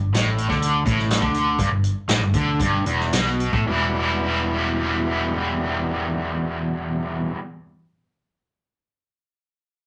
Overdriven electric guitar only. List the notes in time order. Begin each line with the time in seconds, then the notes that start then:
0.14 A2
0.50 D3
0.85 A2
1.22 D3
1.59 G2
1.71 G2
2.09 A2
2.22 G2
2.35 D3
2.62 G2
2.86 E2
3.13 B2
3.54 A2
3.66 E2 B2 E3 G3 B3
3.70 E4